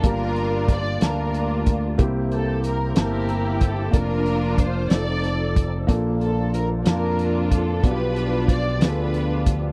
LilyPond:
<<
  \new Staff \with { instrumentName = "String section" } { \time 6/8 \key bes \major \tempo 4. = 62 << { bes'4 d''8 bes'4 r8 | r8 a'8 bes'8 bes'4 a'8 | bes'4 c''8 d''4 r8 | r8 a'8 bes'8 bes'4 a'8 |
b'4 d''8 b'4 r8 | } \\ { <d' f'>4. <d' f'>4. | r4. <e' g'>4. | <d' f'>4. a'4. | r4. <d' f'>4. |
<d' f'>4. <d' f'>4. | } >> }
  \new Staff \with { instrumentName = "Grand piano" } { \time 6/8 \key bes \major <g, bes d' f' g'>4. <a bes d' f' a''>4. | <c bes c' e' g'>4. <bes c' e' a''>4. | <bes d' f' bes'>4. <c' ees' f' a'>4. | <bes, bes d' f' a'>4. <bes d' f' a''>4. |
<b, b d' f' ges' g'>4. <b d' f' aes' a'>4. | }
  \new Staff \with { instrumentName = "Tonewheel organ" } { \time 6/8 \key bes \major <bes f' g' d''>2. | <bes e' g' c''>2. | <f bes d' bes'>4. <f c' ees' a'>4. | <f bes d' f'>2. |
<f b d' g'>2. | }
  \new Staff \with { instrumentName = "Fingered electric bass" } { \clef bass \time 6/8 \key bes \major g,,4. d,4. | c,4. g,,4. | f,,4. f,,4. | bes,,4. f,4. |
b,,4. d,4. | }
  \new DrumStaff \with { instrumentName = "Drums" } \drummode { \time 6/8 <hh bd>8 hh8 <hh bd>8 <hh sn>8 hh8 <hh bd>8 | <hh bd>8 hh8 hh8 <hh sn>8 hh8 <hh bd>8 | <hh bd>8 hh8 <hh bd>8 <hh sn>8 hh8 <hh bd>8 | <hh bd>8 hh8 hh8 <hh sn>8 hh8 <hh bd>8 |
<hh bd>8 hh8 <hh bd>8 <hh sn>8 hh8 <hh bd>8 | }
>>